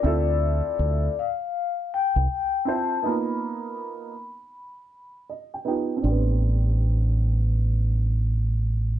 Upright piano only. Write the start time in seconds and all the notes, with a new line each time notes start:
0.03 C4 E4 F4 A4
2.65 C4 E4 F4 C5
3.03 A#3 B3 D#4 F4
5.30 D#5
5.54 G5
5.65 B3 D#4 F4 G4
5.97 C4
6.01 D4
6.06 G4
6.11 B3